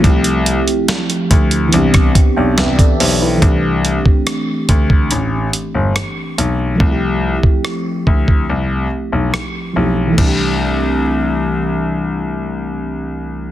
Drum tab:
CC |----------------|----------------|----------------|x---------------|
HH |xxxxxxxxxxx-xxo-|x-x-x-x-x-x-x-x-|----------------|----------------|
SD |----o----r--o---|----r-------r---|----r-------r---|----------------|
BD |o-----o--oo--o--|o--o--oo--------|o--o--oo--------|o---------------|